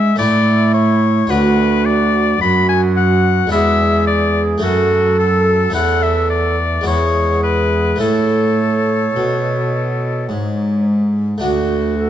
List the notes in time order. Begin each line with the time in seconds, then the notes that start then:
Already playing: G#3 B3 D4 E4 E5
0.16 A2 A3 C#4 E4 D5
0.20 A2
0.74 C#5
1.27 D2 D4 F#4 B4
1.31 F#4
1.85 D5
2.41 F#2 F#4 B5
2.69 G#5
2.96 F#5
3.47 G#3 D4 E4
3.52 E2 G#4 E5
4.07 D5
4.58 A3 C#4
4.62 F#2 F#4 A4
5.19 A4
5.70 E2 A3 C#4 E4
5.74 E2 A4 F#5
6.03 E5
6.30 D5
6.81 G#3 B3 E4
6.86 E2 G#4 C#5
7.43 B4
7.96 A3 C#4 E4 C#5
8.00 A2 A4
9.16 B2
10.29 G#2
11.38 A3 D4 F#4
11.42 D2 F#4
11.98 A4